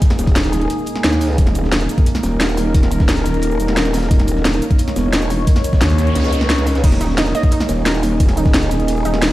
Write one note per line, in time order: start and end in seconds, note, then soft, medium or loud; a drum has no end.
0.00 9.32 A#3 medium
0.00 9.32 D#4 medium
0.00 1.37 G#4 loud
0.00 kick loud
0.00 snare soft
0.00 closed hi-hat medium
0.10 snare loud
0.10 snare soft
0.10 closed hi-hat medium
0.10 closed hi-hat soft
0.18 0.69 D#1 medium
0.18 snare medium
0.18 closed hi-hat medium
0.18 cabasa medium
0.27 kick loud
0.27 snare soft
0.27 closed hi-hat medium
0.36 snare loud
0.36 closed hi-hat medium
0.36 closed hi-hat loud
0.36 cabasa soft
0.44 snare medium
0.44 closed hi-hat soft
0.52 snare soft
0.52 closed hi-hat medium
0.52 cabasa medium
0.61 closed hi-hat soft
0.70 closed hi-hat medium
0.79 cabasa soft
0.86 closed hi-hat medium
0.86 cabasa medium
0.96 snare medium
1.04 1.37 D#2 loud
1.04 snare loud
1.04 closed hi-hat medium
1.13 snare medium
1.13 snare soft
1.13 cabasa soft
1.21 open hi-hat medium
1.21 cabasa medium
1.38 1.88 D#1 loud
1.38 4.10 A#4 medium
1.38 kick loud
1.38 closed hi-hat medium
1.47 snare soft
1.47 closed hi-hat soft
1.55 closed hi-hat medium
1.55 cabasa medium
1.64 snare soft
1.72 snare loud
1.72 closed hi-hat medium
1.81 closed hi-hat soft
1.89 closed hi-hat medium
1.89 cabasa medium
1.98 kick loud
1.98 closed hi-hat soft
2.06 closed hi-hat medium
2.15 snare medium
2.15 cabasa soft
2.23 3.58 D#1 medium
2.23 snare soft
2.23 closed hi-hat medium
2.23 cabasa medium
2.40 snare loud
2.40 closed hi-hat medium
2.49 cabasa soft
2.57 closed hi-hat medium
2.57 open hi-hat medium
2.57 cabasa medium
2.74 kick loud
2.74 closed hi-hat medium
2.82 snare soft
2.82 closed hi-hat soft
2.92 closed hi-hat medium
2.92 cabasa medium
3.00 kick loud
3.00 snare medium
3.08 snare loud
3.08 closed hi-hat medium
3.08 cabasa soft
3.17 snare medium
3.17 closed hi-hat soft
3.26 snare soft
3.26 closed hi-hat medium
3.26 cabasa medium
3.34 closed hi-hat soft
3.42 closed hi-hat loud
3.42 closed hi-hat medium
3.51 cabasa soft
3.60 4.10 D#1 medium
3.60 closed hi-hat medium
3.60 cabasa medium
3.68 snare medium
3.77 snare loud
3.77 closed hi-hat medium
3.85 snare medium
3.85 snare soft
3.85 cabasa soft
3.94 snare medium
3.94 closed hi-hat medium
3.94 open hi-hat medium
3.94 cabasa medium
3.98 snare medium
3.98 closed hi-hat medium
4.02 snare medium
4.02 closed hi-hat medium
4.11 4.61 D#1 loud
4.11 6.83 C#5 loud
4.11 kick loud
4.11 closed hi-hat loud
4.11 closed hi-hat medium
4.20 snare soft
4.20 closed hi-hat soft
4.27 closed hi-hat medium
4.27 cabasa medium
4.36 snare soft
4.44 snare loud
4.44 closed hi-hat loud
4.44 closed hi-hat medium
4.54 closed hi-hat soft
4.62 closed hi-hat medium
4.62 cabasa medium
4.71 kick loud
4.71 closed hi-hat soft
4.78 closed hi-hat medium
4.87 snare medium
4.87 closed hi-hat soft
4.87 cabasa soft
4.96 5.46 E1 loud
4.96 snare soft
4.96 closed hi-hat medium
4.96 cabasa medium
5.13 snare loud
5.13 closed hi-hat medium
5.13 closed hi-hat loud
5.22 cabasa soft
5.30 closed hi-hat medium
5.30 open hi-hat medium
5.30 cabasa medium
5.47 kick loud
5.47 closed hi-hat medium
5.47 closed hi-hat loud
5.47 noise sweep medium
5.56 snare soft
5.56 closed hi-hat soft
5.64 closed hi-hat medium
5.64 cabasa medium
5.73 kick loud
5.73 snare medium
5.81 6.14 D#2 loud
5.81 snare loud
5.81 closed hi-hat loud
5.81 closed hi-hat medium
5.81 cabasa soft
5.90 snare medium
5.90 closed hi-hat soft
5.98 snare soft
5.98 closed hi-hat medium
5.98 cabasa medium
6.07 closed hi-hat soft
6.15 6.82 C#2 loud
6.15 snare medium
6.15 closed hi-hat medium
6.15 closed hi-hat loud
6.20 snare medium
6.20 closed hi-hat medium
6.24 snare loud
6.24 closed hi-hat medium
6.24 cabasa soft
6.28 snare medium
6.28 closed hi-hat medium
6.33 closed hi-hat medium
6.33 cabasa medium
6.41 snare medium
6.41 closed hi-hat medium
6.50 snare loud
6.50 closed hi-hat loud
6.58 snare soft
6.58 closed hi-hat medium
6.58 cabasa soft
6.67 open hi-hat medium
6.67 cabasa medium
6.75 snare loud
6.75 closed hi-hat medium
6.75 closed hi-hat soft
6.84 7.33 D#1 loud
6.84 6.99 D#4 medium
6.84 9.32 G#4 medium
6.84 kick loud
6.84 closed hi-hat loud
6.84 closed hi-hat medium
6.84 ride medium
6.84 crash medium
6.92 snare soft
6.92 closed hi-hat soft
7.01 7.07 D#4 medium
7.01 closed hi-hat medium
7.01 cabasa medium
7.10 snare soft
7.18 7.28 D#4 medium
7.18 snare loud
7.18 closed hi-hat medium
7.18 closed hi-hat loud
7.18 ride medium
7.26 closed hi-hat soft
7.35 7.50 D#5 loud
7.35 closed hi-hat medium
7.35 cabasa medium
7.43 kick loud
7.43 closed hi-hat soft
7.51 7.62 D#4 medium
7.51 closed hi-hat medium
7.51 ride medium
7.60 snare medium
7.60 closed hi-hat soft
7.60 cabasa soft
7.69 9.04 D#1 medium
7.69 snare soft
7.69 closed hi-hat medium
7.69 cabasa medium
7.86 7.96 A#4 medium
7.86 snare loud
7.86 closed hi-hat medium
7.86 ride medium
7.95 cabasa soft
8.03 closed hi-hat medium
8.03 open hi-hat medium
8.03 cabasa medium
8.20 kick loud
8.20 closed hi-hat medium
8.20 ride medium
8.28 snare soft
8.28 closed hi-hat soft
8.37 8.43 D#4 medium
8.37 closed hi-hat medium
8.37 cabasa medium
8.46 kick loud
8.46 snare medium
8.54 snare loud
8.54 closed hi-hat medium
8.54 ride medium
8.54 cabasa soft
8.63 snare medium
8.63 closed hi-hat soft
8.71 snare soft
8.71 closed hi-hat medium
8.71 cabasa medium
8.80 closed hi-hat soft
8.88 closed hi-hat medium
8.88 closed hi-hat loud
8.88 ride medium
8.97 cabasa soft
9.05 9.32 D#1 medium
9.05 9.11 D#4 loud
9.05 closed hi-hat medium
9.05 cabasa medium
9.14 snare medium
9.22 9.32 D#4 medium
9.22 snare loud
9.22 closed hi-hat medium
9.22 ride medium